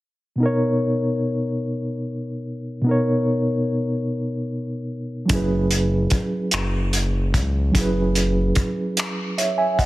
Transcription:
0.36 reed electric piano B2 B3
0.40 reed electric piano D#4 A#4
0.46 reed electric piano C#5
2.82 reed electric piano B2 B3
2.87 reed electric piano D#4 A#4
2.91 reed electric piano C#5
5.26 reed electric piano F#3 C#4, closed hi-hat
5.30 analog synth bass F#1, reed electric piano E4 G#4, kick
5.35 reed electric piano B4
5.71 closed hi-hat
6.10 analog synth bass F#1, kick, closed hi-hat
6.51 analog synth bass F#1, finger snap, closed hi-hat
6.93 closed hi-hat
7.34 analog synth bass C#2, kick, closed hi-hat
7.71 analog synth bass F#1, reed electric piano F#3 C#4, kick, closed hi-hat
7.76 reed electric piano E4 G#4
7.81 reed electric piano B4
8.15 closed hi-hat
8.55 analog synth bass F#1, kick, closed hi-hat
8.97 finger snap, closed hi-hat
9.38 reed electric piano C#5 E5, closed hi-hat
9.58 reed electric piano E5 G#5
9.79 reed electric piano D#5 F#5, kick, closed hi-hat

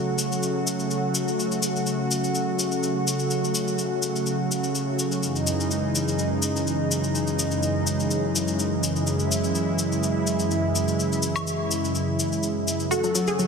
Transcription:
Already playing: analog synth pad C#3 F#3 A3 F#4
0.18 cabasa
0.32 cabasa
0.43 cabasa
0.67 cabasa
0.79 cabasa
0.91 cabasa
1.15 cabasa
1.28 cabasa
1.39 cabasa
1.52 cabasa
1.63 cabasa
1.76 cabasa
1.86 cabasa
2.11 cabasa
2.24 cabasa
2.35 cabasa
2.59 cabasa
2.72 cabasa
2.83 cabasa
3.07 cabasa
3.19 cabasa
3.31 cabasa
3.44 cabasa
3.55 cabasa
3.68 cabasa
3.78 cabasa
4.02 cabasa
4.16 cabasa
4.26 cabasa
4.52 cabasa
4.64 cabasa
4.75 cabasa
4.99 cabasa
5.12 cabasa
5.23 analog synth pad F#2 E3 G#3 D#4, cabasa
5.36 cabasa
5.47 cabasa
5.60 cabasa
5.71 cabasa
5.95 cabasa
6.08 cabasa
6.19 cabasa
6.42 cabasa
6.56 cabasa
6.67 cabasa
6.91 cabasa
7.04 cabasa
7.15 cabasa
7.27 cabasa
7.39 cabasa
7.51 cabasa
7.63 cabasa
7.87 cabasa
8.00 cabasa
8.11 cabasa
8.35 cabasa
8.48 cabasa
8.59 cabasa
8.83 cabasa
8.96 cabasa
9.07 analog synth pad E4, cabasa
9.19 cabasa
9.31 cabasa
9.44 cabasa
9.55 cabasa
9.79 cabasa
9.92 cabasa
10.03 cabasa
10.27 cabasa
10.39 cabasa
10.51 cabasa
10.75 cabasa
10.88 cabasa
11.00 cabasa
11.12 cabasa
11.23 cabasa
11.36 cabasa, high woodblock
11.47 cabasa
11.71 cabasa
11.84 cabasa
11.95 cabasa
12.19 cabasa
12.32 cabasa
12.43 cabasa
12.68 cabasa
12.80 cabasa
12.91 analog synth pad C#3 F#3 A3 F#4, synth pluck F#4, soft synth lead A4, cabasa
13.04 synth pluck F#3, cabasa
13.15 synth pluck F#3, cabasa
13.27 synth pluck G#4, cabasa
13.39 synth pluck F#3, cabasa

